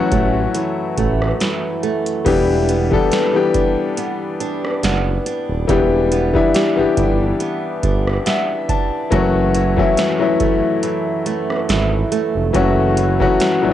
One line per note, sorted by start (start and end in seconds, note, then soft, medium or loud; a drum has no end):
0.00 2.26 F#2 medium
0.00 0.54 E3 medium
0.00 2.25 E3 medium
0.00 2.28 F#3 medium
0.00 0.11 A3 medium
0.00 2.28 A3 medium
0.00 2.28 C#4 medium
0.00 2.35 C#4 medium
0.00 2.28 E4 loud
0.00 1.46 F#4 loud
0.00 2.28 A4 loud
0.12 0.47 A1 medium
0.12 0.96 A3 medium
0.12 kick loud
0.12 closed hi-hat medium
0.54 1.40 E3 medium
0.54 closed hi-hat medium
0.97 1.33 A1 medium
0.97 1.82 A3 medium
0.97 kick medium
0.97 closed hi-hat medium
1.22 cross-stick medium
1.40 2.26 E3 medium
1.40 snare loud
1.40 closed hi-hat medium
1.83 2.35 A3 medium
1.83 closed hi-hat soft
2.06 closed hi-hat medium
2.25 2.96 E1 loud
2.25 2.85 E3 medium
2.25 5.69 E3 medium
2.25 2.85 G3 medium
2.25 2.85 B3 medium
2.25 2.86 D4 medium
2.25 2.86 G4 medium
2.25 kick loud
2.25 closed hi-hat medium
2.25 crash loud
2.69 3.96 B3 medium
2.69 closed hi-hat medium
2.90 3.30 E3 medium
2.90 3.30 G3 medium
2.90 3.30 B3 medium
2.90 3.31 D4 medium
2.90 3.31 A4 loud
2.90 kick loud
3.12 6.54 G4 medium
3.12 snare loud
3.12 closed hi-hat medium
3.33 4.88 E3 medium
3.33 4.88 G3 medium
3.33 4.88 B3 medium
3.33 4.89 D4 medium
3.33 4.89 G4 medium
3.54 4.39 D4 medium
3.54 kick loud
3.54 closed hi-hat medium
3.97 4.82 B3 medium
3.97 closed hi-hat medium
4.40 5.25 D4 medium
4.40 closed hi-hat medium
4.65 cross-stick medium
4.83 5.18 F#1 loud
4.83 6.11 B3 medium
4.83 snare loud
4.83 closed hi-hat medium
5.26 6.97 D4 medium
5.26 closed hi-hat medium
5.49 5.65 D#1 medium
5.67 6.39 E1 loud
5.67 6.27 E3 medium
5.67 9.15 E3 medium
5.67 6.28 G3 medium
5.67 6.28 B3 medium
5.67 6.28 D4 medium
5.67 6.29 G4 loud
5.67 kick loud
5.67 closed hi-hat medium
6.12 7.39 B3 medium
6.12 closed hi-hat medium
6.33 6.72 E3 medium
6.33 6.73 G3 medium
6.33 6.73 B3 medium
6.33 6.73 D4 medium
6.33 6.74 E4 loud
6.33 kick loud
6.55 9.21 G4 medium
6.55 snare loud
6.55 closed hi-hat medium
6.76 6.86 G1 medium
6.76 8.30 E3 medium
6.76 8.31 G3 medium
6.76 8.31 B3 medium
6.76 8.31 D4 medium
6.76 8.32 G4 medium
6.97 7.33 G1 medium
6.97 7.82 D4 medium
6.97 kick loud
6.97 closed hi-hat medium
7.40 8.25 B3 medium
7.40 closed hi-hat medium
7.83 8.18 G1 medium
7.83 8.68 D4 medium
7.83 kick medium
7.83 closed hi-hat medium
8.07 cross-stick medium
8.26 9.21 B3 medium
8.26 8.66 E5 medium
8.26 snare loud
8.26 closed hi-hat medium
8.69 9.21 D4 medium
8.69 9.09 A5 medium
8.69 kick loud
8.69 closed hi-hat medium
9.10 9.82 F#1 loud
9.10 12.53 F#2 medium
9.10 9.70 E3 medium
9.10 9.71 F#3 medium
9.10 9.71 A3 medium
9.10 9.71 C#4 medium
9.10 9.72 F#4 loud
9.10 kick loud
9.10 closed hi-hat medium
9.54 10.83 E3 medium
9.54 closed hi-hat medium
9.76 10.15 E3 medium
9.76 10.16 F#3 medium
9.76 10.16 A3 medium
9.76 10.16 C#4 medium
9.76 10.17 E4 loud
9.76 kick loud
9.97 13.39 C#4 medium
9.97 snare loud
9.97 closed hi-hat medium
10.19 11.73 E3 medium
10.19 11.74 F#3 medium
10.19 11.74 A3 medium
10.19 11.75 C#4 medium
10.19 11.75 E4 medium
10.40 11.25 A3 medium
10.40 kick loud
10.40 closed hi-hat medium
10.83 11.68 E3 medium
10.83 closed hi-hat medium
11.26 12.11 A3 medium
11.26 closed hi-hat medium
11.50 cross-stick medium
11.69 12.04 G#1 loud
11.69 12.97 E3 medium
11.69 snare loud
11.69 closed hi-hat medium
12.12 13.73 A3 medium
12.12 closed hi-hat medium
12.35 12.51 F1 medium
12.53 13.25 F#1 loud
12.53 13.73 F#2 medium
12.53 13.13 E3 medium
12.53 13.13 F#3 medium
12.53 13.14 A3 medium
12.53 13.14 C#4 medium
12.53 13.14 F#4 loud
12.53 kick loud
12.53 closed hi-hat medium
12.97 13.73 E3 medium
12.97 closed hi-hat medium
13.19 13.58 E3 medium
13.19 13.59 F#3 medium
13.19 13.59 A3 medium
13.19 13.59 C#4 medium
13.19 13.60 F#4 loud
13.19 kick loud
13.19 cross-stick medium
13.40 13.73 C#4 medium
13.40 snare loud
13.40 closed hi-hat medium
13.62 13.71 A1 medium
13.62 13.73 E3 medium
13.62 13.73 F#3 medium
13.62 13.73 A3 medium
13.62 13.73 C#4 medium
13.62 13.70 D4 medium